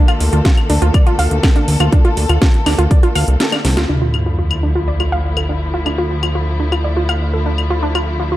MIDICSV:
0, 0, Header, 1, 6, 480
1, 0, Start_track
1, 0, Key_signature, -1, "minor"
1, 0, Tempo, 491803
1, 1879, Time_signature, 4, 2, 24, 8
1, 8167, End_track
2, 0, Start_track
2, 0, Title_t, "Synth arpeggio sound"
2, 0, Program_c, 0, 84
2, 80, Note_on_c, 0, 65, 97
2, 190, Note_off_c, 0, 65, 0
2, 320, Note_on_c, 0, 65, 77
2, 394, Note_off_c, 0, 65, 0
2, 440, Note_on_c, 0, 65, 81
2, 551, Note_off_c, 0, 65, 0
2, 680, Note_on_c, 0, 62, 78
2, 791, Note_off_c, 0, 62, 0
2, 799, Note_on_c, 0, 65, 101
2, 910, Note_off_c, 0, 65, 0
2, 920, Note_on_c, 0, 74, 83
2, 993, Note_off_c, 0, 74, 0
2, 1040, Note_on_c, 0, 65, 102
2, 1151, Note_off_c, 0, 65, 0
2, 1159, Note_on_c, 0, 77, 99
2, 1270, Note_off_c, 0, 77, 0
2, 1399, Note_on_c, 0, 69, 78
2, 1510, Note_off_c, 0, 69, 0
2, 1519, Note_on_c, 0, 62, 79
2, 1563, Note_off_c, 0, 62, 0
2, 1759, Note_on_c, 0, 65, 102
2, 1870, Note_off_c, 0, 65, 0
2, 1879, Note_on_c, 0, 62, 104
2, 1923, Note_off_c, 0, 62, 0
2, 1998, Note_on_c, 0, 65, 102
2, 2110, Note_off_c, 0, 65, 0
2, 2238, Note_on_c, 0, 65, 78
2, 2313, Note_off_c, 0, 65, 0
2, 2359, Note_on_c, 0, 65, 80
2, 2470, Note_off_c, 0, 65, 0
2, 2598, Note_on_c, 0, 62, 79
2, 2710, Note_off_c, 0, 62, 0
2, 2718, Note_on_c, 0, 65, 99
2, 2830, Note_off_c, 0, 65, 0
2, 2838, Note_on_c, 0, 74, 81
2, 2913, Note_off_c, 0, 74, 0
2, 2958, Note_on_c, 0, 65, 97
2, 3070, Note_off_c, 0, 65, 0
2, 3078, Note_on_c, 0, 77, 101
2, 3190, Note_off_c, 0, 77, 0
2, 3318, Note_on_c, 0, 69, 81
2, 3430, Note_off_c, 0, 69, 0
2, 3439, Note_on_c, 0, 62, 75
2, 3483, Note_off_c, 0, 62, 0
2, 3679, Note_on_c, 0, 65, 102
2, 3790, Note_off_c, 0, 65, 0
2, 3799, Note_on_c, 0, 62, 97
2, 3843, Note_off_c, 0, 62, 0
2, 3920, Note_on_c, 0, 65, 94
2, 4030, Note_off_c, 0, 65, 0
2, 4160, Note_on_c, 0, 65, 72
2, 4234, Note_off_c, 0, 65, 0
2, 4281, Note_on_c, 0, 65, 79
2, 4391, Note_off_c, 0, 65, 0
2, 4520, Note_on_c, 0, 62, 70
2, 4631, Note_off_c, 0, 62, 0
2, 4640, Note_on_c, 0, 65, 96
2, 4751, Note_off_c, 0, 65, 0
2, 4760, Note_on_c, 0, 74, 78
2, 4834, Note_off_c, 0, 74, 0
2, 4880, Note_on_c, 0, 65, 93
2, 4991, Note_off_c, 0, 65, 0
2, 5000, Note_on_c, 0, 77, 98
2, 5111, Note_off_c, 0, 77, 0
2, 5240, Note_on_c, 0, 69, 73
2, 5351, Note_off_c, 0, 69, 0
2, 5360, Note_on_c, 0, 62, 69
2, 5404, Note_off_c, 0, 62, 0
2, 5600, Note_on_c, 0, 65, 90
2, 5711, Note_off_c, 0, 65, 0
2, 5720, Note_on_c, 0, 62, 99
2, 5764, Note_off_c, 0, 62, 0
2, 5840, Note_on_c, 0, 65, 95
2, 5950, Note_off_c, 0, 65, 0
2, 6080, Note_on_c, 0, 65, 74
2, 6153, Note_off_c, 0, 65, 0
2, 6200, Note_on_c, 0, 65, 77
2, 6311, Note_off_c, 0, 65, 0
2, 6439, Note_on_c, 0, 62, 72
2, 6550, Note_off_c, 0, 62, 0
2, 6560, Note_on_c, 0, 65, 94
2, 6670, Note_off_c, 0, 65, 0
2, 6679, Note_on_c, 0, 74, 77
2, 6753, Note_off_c, 0, 74, 0
2, 6799, Note_on_c, 0, 65, 90
2, 6910, Note_off_c, 0, 65, 0
2, 6919, Note_on_c, 0, 77, 97
2, 7030, Note_off_c, 0, 77, 0
2, 7159, Note_on_c, 0, 69, 73
2, 7270, Note_off_c, 0, 69, 0
2, 7279, Note_on_c, 0, 62, 71
2, 7324, Note_off_c, 0, 62, 0
2, 7519, Note_on_c, 0, 65, 94
2, 7630, Note_off_c, 0, 65, 0
2, 7638, Note_on_c, 0, 62, 99
2, 7683, Note_off_c, 0, 62, 0
2, 7759, Note_on_c, 0, 65, 95
2, 7870, Note_off_c, 0, 65, 0
2, 8000, Note_on_c, 0, 65, 75
2, 8073, Note_off_c, 0, 65, 0
2, 8119, Note_on_c, 0, 65, 78
2, 8167, Note_off_c, 0, 65, 0
2, 8167, End_track
3, 0, Start_track
3, 0, Title_t, "String section"
3, 0, Program_c, 1, 48
3, 0, Note_on_c, 1, 50, 77
3, 0, Note_on_c, 1, 57, 73
3, 0, Note_on_c, 1, 58, 74
3, 0, Note_on_c, 1, 69, 86
3, 3760, Note_off_c, 1, 50, 0
3, 3760, Note_off_c, 1, 57, 0
3, 3760, Note_off_c, 1, 58, 0
3, 3761, Note_off_c, 1, 69, 0
3, 3798, Note_on_c, 1, 50, 75
3, 3798, Note_on_c, 1, 53, 66
3, 3798, Note_on_c, 1, 57, 65
3, 3798, Note_on_c, 1, 64, 79
3, 8167, Note_off_c, 1, 50, 0
3, 8167, Note_off_c, 1, 53, 0
3, 8167, Note_off_c, 1, 57, 0
3, 8167, Note_off_c, 1, 64, 0
3, 8167, End_track
4, 0, Start_track
4, 0, Title_t, "Analog synth bass"
4, 0, Program_c, 2, 38
4, 199, Note_on_c, 2, 38, 96
4, 285, Note_off_c, 2, 38, 0
4, 319, Note_on_c, 2, 38, 83
4, 405, Note_off_c, 2, 38, 0
4, 678, Note_on_c, 2, 38, 96
4, 764, Note_off_c, 2, 38, 0
4, 798, Note_on_c, 2, 38, 84
4, 884, Note_off_c, 2, 38, 0
4, 1159, Note_on_c, 2, 38, 90
4, 1244, Note_off_c, 2, 38, 0
4, 1279, Note_on_c, 2, 38, 83
4, 1365, Note_off_c, 2, 38, 0
4, 1638, Note_on_c, 2, 38, 96
4, 1724, Note_off_c, 2, 38, 0
4, 1759, Note_on_c, 2, 38, 84
4, 1844, Note_off_c, 2, 38, 0
4, 2119, Note_on_c, 2, 38, 97
4, 2205, Note_off_c, 2, 38, 0
4, 2239, Note_on_c, 2, 38, 83
4, 2325, Note_off_c, 2, 38, 0
4, 2598, Note_on_c, 2, 38, 95
4, 2684, Note_off_c, 2, 38, 0
4, 2718, Note_on_c, 2, 38, 78
4, 2804, Note_off_c, 2, 38, 0
4, 3079, Note_on_c, 2, 38, 94
4, 3164, Note_off_c, 2, 38, 0
4, 3199, Note_on_c, 2, 36, 79
4, 3284, Note_off_c, 2, 36, 0
4, 3558, Note_on_c, 2, 36, 92
4, 3679, Note_on_c, 2, 38, 85
4, 3693, Note_off_c, 2, 36, 0
4, 3764, Note_off_c, 2, 38, 0
4, 3799, Note_on_c, 2, 38, 81
4, 8167, Note_off_c, 2, 38, 0
4, 8167, End_track
5, 0, Start_track
5, 0, Title_t, "Sub drop"
5, 0, Program_c, 3, 103
5, 3798, Note_on_c, 3, 60, 61
5, 5719, Note_off_c, 3, 60, 0
5, 8167, End_track
6, 0, Start_track
6, 0, Title_t, "Drums"
6, 80, Note_on_c, 9, 42, 22
6, 80, Note_on_c, 9, 75, 82
6, 178, Note_off_c, 9, 42, 0
6, 178, Note_off_c, 9, 75, 0
6, 200, Note_on_c, 9, 46, 99
6, 297, Note_off_c, 9, 46, 0
6, 320, Note_on_c, 9, 42, 34
6, 417, Note_off_c, 9, 42, 0
6, 439, Note_on_c, 9, 36, 115
6, 440, Note_on_c, 9, 38, 112
6, 440, Note_on_c, 9, 42, 45
6, 537, Note_off_c, 9, 36, 0
6, 537, Note_off_c, 9, 38, 0
6, 537, Note_off_c, 9, 42, 0
6, 560, Note_on_c, 9, 42, 23
6, 560, Note_on_c, 9, 75, 54
6, 658, Note_off_c, 9, 42, 0
6, 658, Note_off_c, 9, 75, 0
6, 679, Note_on_c, 9, 46, 102
6, 777, Note_off_c, 9, 46, 0
6, 800, Note_on_c, 9, 42, 35
6, 898, Note_off_c, 9, 42, 0
6, 919, Note_on_c, 9, 36, 106
6, 920, Note_on_c, 9, 42, 45
6, 920, Note_on_c, 9, 75, 81
6, 1017, Note_off_c, 9, 36, 0
6, 1018, Note_off_c, 9, 42, 0
6, 1018, Note_off_c, 9, 75, 0
6, 1040, Note_on_c, 9, 42, 23
6, 1138, Note_off_c, 9, 42, 0
6, 1160, Note_on_c, 9, 46, 96
6, 1258, Note_off_c, 9, 46, 0
6, 1280, Note_on_c, 9, 42, 33
6, 1377, Note_off_c, 9, 42, 0
6, 1399, Note_on_c, 9, 36, 110
6, 1400, Note_on_c, 9, 38, 117
6, 1400, Note_on_c, 9, 42, 46
6, 1400, Note_on_c, 9, 75, 54
6, 1496, Note_off_c, 9, 36, 0
6, 1497, Note_off_c, 9, 38, 0
6, 1497, Note_off_c, 9, 42, 0
6, 1497, Note_off_c, 9, 75, 0
6, 1520, Note_on_c, 9, 42, 22
6, 1617, Note_off_c, 9, 42, 0
6, 1639, Note_on_c, 9, 46, 99
6, 1737, Note_off_c, 9, 46, 0
6, 1759, Note_on_c, 9, 42, 35
6, 1759, Note_on_c, 9, 75, 83
6, 1857, Note_off_c, 9, 42, 0
6, 1857, Note_off_c, 9, 75, 0
6, 1879, Note_on_c, 9, 36, 116
6, 1879, Note_on_c, 9, 42, 46
6, 1976, Note_off_c, 9, 36, 0
6, 1977, Note_off_c, 9, 42, 0
6, 1999, Note_on_c, 9, 42, 22
6, 2096, Note_off_c, 9, 42, 0
6, 2118, Note_on_c, 9, 46, 95
6, 2216, Note_off_c, 9, 46, 0
6, 2239, Note_on_c, 9, 42, 35
6, 2239, Note_on_c, 9, 75, 53
6, 2336, Note_off_c, 9, 42, 0
6, 2336, Note_off_c, 9, 75, 0
6, 2359, Note_on_c, 9, 36, 115
6, 2359, Note_on_c, 9, 38, 121
6, 2359, Note_on_c, 9, 42, 46
6, 2456, Note_off_c, 9, 36, 0
6, 2456, Note_off_c, 9, 38, 0
6, 2456, Note_off_c, 9, 42, 0
6, 2479, Note_on_c, 9, 42, 23
6, 2576, Note_off_c, 9, 42, 0
6, 2599, Note_on_c, 9, 38, 60
6, 2599, Note_on_c, 9, 46, 99
6, 2599, Note_on_c, 9, 75, 78
6, 2696, Note_off_c, 9, 38, 0
6, 2696, Note_off_c, 9, 46, 0
6, 2696, Note_off_c, 9, 75, 0
6, 2719, Note_on_c, 9, 42, 33
6, 2817, Note_off_c, 9, 42, 0
6, 2839, Note_on_c, 9, 36, 106
6, 2839, Note_on_c, 9, 42, 46
6, 2936, Note_off_c, 9, 36, 0
6, 2936, Note_off_c, 9, 42, 0
6, 2959, Note_on_c, 9, 42, 24
6, 3057, Note_off_c, 9, 42, 0
6, 3079, Note_on_c, 9, 46, 101
6, 3079, Note_on_c, 9, 75, 53
6, 3177, Note_off_c, 9, 46, 0
6, 3177, Note_off_c, 9, 75, 0
6, 3199, Note_on_c, 9, 42, 36
6, 3297, Note_off_c, 9, 42, 0
6, 3319, Note_on_c, 9, 38, 119
6, 3319, Note_on_c, 9, 42, 48
6, 3417, Note_off_c, 9, 38, 0
6, 3417, Note_off_c, 9, 42, 0
6, 3439, Note_on_c, 9, 38, 53
6, 3439, Note_on_c, 9, 42, 23
6, 3439, Note_on_c, 9, 75, 80
6, 3537, Note_off_c, 9, 38, 0
6, 3537, Note_off_c, 9, 42, 0
6, 3537, Note_off_c, 9, 75, 0
6, 3559, Note_on_c, 9, 38, 76
6, 3559, Note_on_c, 9, 46, 98
6, 3657, Note_off_c, 9, 38, 0
6, 3657, Note_off_c, 9, 46, 0
6, 3680, Note_on_c, 9, 38, 83
6, 3680, Note_on_c, 9, 42, 35
6, 3778, Note_off_c, 9, 38, 0
6, 3778, Note_off_c, 9, 42, 0
6, 4039, Note_on_c, 9, 75, 46
6, 4137, Note_off_c, 9, 75, 0
6, 4399, Note_on_c, 9, 75, 67
6, 4497, Note_off_c, 9, 75, 0
6, 4880, Note_on_c, 9, 75, 47
6, 4977, Note_off_c, 9, 75, 0
6, 5239, Note_on_c, 9, 75, 67
6, 5337, Note_off_c, 9, 75, 0
6, 5719, Note_on_c, 9, 75, 46
6, 5817, Note_off_c, 9, 75, 0
6, 6080, Note_on_c, 9, 75, 67
6, 6177, Note_off_c, 9, 75, 0
6, 6560, Note_on_c, 9, 75, 44
6, 6658, Note_off_c, 9, 75, 0
6, 6919, Note_on_c, 9, 75, 68
6, 7017, Note_off_c, 9, 75, 0
6, 7400, Note_on_c, 9, 75, 45
6, 7497, Note_off_c, 9, 75, 0
6, 7759, Note_on_c, 9, 75, 66
6, 7857, Note_off_c, 9, 75, 0
6, 8167, End_track
0, 0, End_of_file